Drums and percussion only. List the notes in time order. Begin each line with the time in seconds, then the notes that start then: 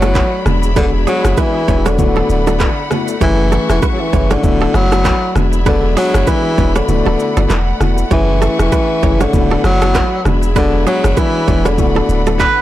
0.02 cross-stick, low bongo, shaker
0.15 kick, clap, high bongo, shaker
0.46 cross-stick, low bongo, low conga, shaker
0.63 shaker
0.76 kick, low conga, shaker
1.07 shaker
1.25 cross-stick, low bongo, shaker
1.37 kick, high bongo, shaker
1.68 kick, shaker
1.86 cross-stick, high bongo, shaker
1.99 kick, low conga, shaker
2.16 low bongo
2.30 shaker
2.47 low bongo, shaker
2.60 kick, clap, high bongo, shaker
2.91 cross-stick, low bongo, low conga, shaker
3.08 shaker
3.21 kick, low conga, shaker
3.52 shaker
3.70 cross-stick, low bongo, shaker
3.82 kick, high bongo, shaker
4.13 kick, shaker
4.31 cross-stick, high bongo, shaker
4.44 kick, low conga, shaker
4.61 low bongo
4.74 cross-stick, shaker
4.92 cross-stick, low bongo, shaker
5.05 kick, clap, high bongo, shaker
5.36 cross-stick, low bongo, low conga, shaker
5.53 shaker
5.66 kick, low conga, shaker
5.97 open hi-hat, shaker
6.14 cross-stick, low bongo, shaker
6.27 kick, high bongo, shaker
6.58 kick, shaker
6.76 cross-stick, high bongo, shaker
6.89 low conga, shaker
7.06 low bongo
7.20 shaker
7.37 low bongo, shaker
7.50 clap, high bongo, shaker
7.81 cross-stick, low bongo, low conga, shaker
7.98 shaker
8.11 kick, low conga, shaker
8.42 shaker
8.59 cross-stick, low bongo, shaker
8.72 kick, high bongo, shaker
9.03 kick, shaker
9.21 cross-stick, high bongo, shaker
9.33 kick, low conga, shaker
9.51 low bongo
9.64 cross-stick, shaker
9.82 cross-stick, low bongo, shaker
9.95 kick, clap, high bongo, shaker
10.25 cross-stick, low bongo, low conga, shaker
10.43 shaker
10.55 kick, low conga, shaker
10.87 shaker
11.04 cross-stick, low bongo, shaker
11.17 kick, high bongo, shaker
11.48 kick, shaker
11.65 cross-stick, high bongo, shaker
11.78 kick, low conga, shaker
11.95 low bongo
12.09 shaker
12.27 low bongo, shaker
12.40 kick, clap, high bongo, shaker